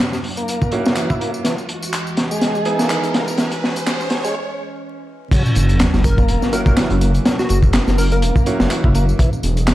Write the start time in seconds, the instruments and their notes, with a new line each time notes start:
Already playing: ambient pad F#2 F#3 A#3 E4, grand piano A#3 C#4 E4 F#4, riser
0.00 snare
0.12 snare, tambourine
0.24 open hi-hat
0.37 tonewheel organ A#3, closed hi-hat, tambourine
0.48 closed hi-hat, tambourine
0.62 kick, tambourine
0.72 grand piano A#3 C#4 E4 F#4, closed hi-hat
0.85 tonewheel organ A#3, snare, tambourine
0.96 tonewheel organ E3, clap, closed hi-hat, tambourine
1.10 tonewheel organ E4, kick, tambourine
1.20 tonewheel organ A#3, closed hi-hat
1.34 tambourine
1.45 ambient pad E2 E3 G#3 D#5, tonewheel organ E3, snare, closed hi-hat, tambourine
1.58 tambourine
1.69 closed hi-hat
1.82 closed hi-hat, tambourine
1.93 clap, closed hi-hat, tambourine
2.07 tambourine
2.17 snare, closed hi-hat
2.31 tonewheel organ G#3, tambourine
2.41 snare, closed hi-hat, tambourine
2.55 tambourine
2.65 grand piano B3 D#4 E4 G#4, closed hi-hat
2.79 tonewheel organ A#3, snare, tambourine
2.90 tonewheel organ D#3, clap, closed hi-hat, tambourine
3.03 tonewheel organ D#4, closed hi-hat, tambourine
3.14 tonewheel organ A#3, snare, closed hi-hat
3.28 tambourine
3.38 tonewheel organ E3, ambient pad C#4, snare, closed hi-hat, tambourine
3.51 closed hi-hat, tambourine
3.64 snare
3.76 closed hi-hat, tambourine
3.87 snare, clap, closed hi-hat, tambourine
4.01 tambourine
4.10 snare, closed hi-hat
4.24 tonewheel organ G#3, closed hi-hat, tambourine
5.31 ambient pad F#3 C#4 E4 A#4, tonewheel organ F#3, kick, closed hi-hat, crash, tambourine, sub drop
5.46 tambourine
5.55 detuned saw bass F#1, closed hi-hat, tambourine
5.69 closed hi-hat, tambourine
5.79 snare, clap, closed hi-hat, tambourine
5.94 detuned saw bass F#1, snare, tambourine
6.04 digital synth lead A#4, kick, closed hi-hat, tambourine
6.18 tonewheel organ A#3, kick, tambourine
6.28 detuned saw bass E1, closed hi-hat, tambourine
6.42 snare, tambourine
6.53 grand piano A#3 C#4 E4 F#4, digital synth lead A#4, closed hi-hat, tambourine
6.66 detuned saw bass F#1, tonewheel organ A#3, digital synth lead A#4, kick, tambourine
6.77 tonewheel organ E3, snare, clap, closed hi-hat, tambourine
6.90 detuned saw bass F#1, tonewheel organ E4, closed hi-hat
7.01 tonewheel organ A#3, closed hi-hat, tambourine
7.14 closed hi-hat, tambourine
7.25 tonewheel organ F#3, snare, closed hi-hat, tambourine
7.39 digital synth lead F#4, snare, tambourine
7.49 detuned saw bass F#1, digital synth lead F#4, closed hi-hat, tambourine
7.62 kick, tambourine
7.73 snare, clap, closed hi-hat, tambourine
7.87 detuned saw bass F#1, snare, tambourine
7.98 digital synth lead A#4, open hi-hat, tambourine
8.12 tonewheel organ A#3, digital synth lead A#4, closed hi-hat, tambourine
8.22 detuned saw bass E1, closed hi-hat, tambourine
8.36 kick, tambourine
8.46 grand piano A#3 C#4 E4 F#4, closed hi-hat, tambourine
8.60 detuned saw bass F#1, tonewheel organ A#3, snare, tambourine
8.71 tonewheel organ E3, clap, closed hi-hat, tambourine
8.84 detuned saw bass F#1, tonewheel organ E4, kick
8.95 tonewheel organ A#3, closed hi-hat, tambourine
9.09 tambourine
9.19 tonewheel organ E3, ambient pad E3 B3 G#4 D#5, kick, closed hi-hat, tambourine
9.33 tambourine
9.43 detuned saw bass E1, closed hi-hat, tambourine
9.57 closed hi-hat, tambourine
9.67 snare, clap, closed hi-hat, tambourine